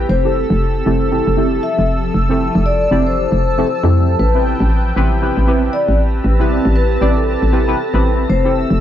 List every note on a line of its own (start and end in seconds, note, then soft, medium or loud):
0.00 1.75 C4 medium
0.00 1.75 G4 medium
0.09 0.44 F1 loud
0.09 4.19 F3 medium
0.09 4.15 A4 medium
0.09 0.30 C5 loud
0.09 4.15 E6 medium
0.24 0.83 C4 medium
0.24 0.83 E4 medium
0.24 0.84 G4 medium
0.24 0.84 A4 medium
0.30 5.85 E6 medium
0.50 0.82 F1 loud
0.86 1.21 F1 medium
0.86 1.09 C4 loud
0.86 1.09 E4 medium
0.86 1.09 G4 medium
0.86 1.09 A4 loud
1.08 1.35 C4 medium
1.08 1.35 E4 medium
1.08 1.35 G4 medium
1.08 5.67 A5 medium
1.12 1.35 A4 medium
1.27 1.59 F1 medium
1.36 2.25 C4 medium
1.36 2.26 E4 medium
1.36 2.26 G4 medium
1.36 2.26 A4 loud
1.63 1.84 E5 loud
1.78 2.10 F1 medium
2.14 2.50 F1 loud
2.29 2.88 C4 medium
2.29 2.89 E4 medium
2.29 2.89 G4 medium
2.29 2.89 A4 loud
2.55 2.87 F1 loud
2.66 2.97 D5 loud
2.91 3.27 F1 medium
2.91 3.40 C4 loud
2.91 3.40 E4 medium
2.91 3.40 G4 medium
2.91 3.41 D5 loud
3.07 4.11 C5 medium
3.32 3.64 F1 medium
3.57 3.67 C4 loud
3.57 3.68 E4 medium
3.57 3.68 G4 medium
3.57 3.68 A4 loud
3.83 4.16 F2 medium
3.83 4.18 C4 loud
3.83 4.18 E4 medium
3.83 4.18 G4 medium
3.83 4.18 A4 loud
4.19 4.55 A1 loud
4.19 8.80 G4 medium
4.19 8.26 B4 medium
4.19 4.41 B4 medium
4.19 6.22 G5 medium
4.34 4.93 C4 medium
4.34 4.94 E4 medium
4.34 4.94 G4 medium
4.34 4.94 B4 medium
4.60 4.92 A1 loud
4.66 8.80 C4 medium
4.96 5.32 A1 medium
4.96 5.19 C4 loud
4.96 5.19 E4 medium
4.96 5.20 G4 medium
4.96 5.20 B4 loud
5.22 5.45 C4 medium
5.22 5.45 E4 medium
5.22 5.45 G4 medium
5.22 5.45 B4 medium
5.37 5.69 A1 medium
5.47 6.36 C4 medium
5.47 6.36 E4 medium
5.47 6.36 G4 medium
5.47 6.37 B4 loud
5.73 5.95 D5 loud
5.89 6.21 A1 medium
6.24 6.60 A1 loud
6.24 8.28 A5 medium
6.39 6.99 C4 medium
6.39 6.99 E4 medium
6.39 6.99 G4 medium
6.39 6.99 B4 loud
6.65 6.98 A1 loud
6.76 7.07 B4 loud
7.01 7.37 A1 medium
7.01 7.50 C4 loud
7.01 7.51 E4 loud
7.01 7.51 G4 medium
7.01 7.51 D5 loud
7.17 8.21 A4 medium
7.42 7.75 A1 medium
7.52 7.66 C4 medium
7.52 7.66 E4 medium
7.52 7.66 G4 medium
7.52 7.66 B4 loud
7.68 7.78 C4 medium
7.68 7.78 E4 medium
7.68 7.78 G4 medium
7.68 7.78 B4 loud
7.93 8.26 A1 medium
7.93 8.28 C4 medium
7.93 8.28 E4 medium
7.93 8.28 G4 medium
7.93 8.29 B4 medium
8.29 8.65 F1 loud
8.29 8.80 A4 medium
8.29 8.51 C5 medium
8.29 8.80 E6 medium
8.44 8.80 C4 medium
8.44 8.80 E4 medium
8.44 8.80 G4 medium
8.44 8.80 A4 medium
8.71 8.80 F1 loud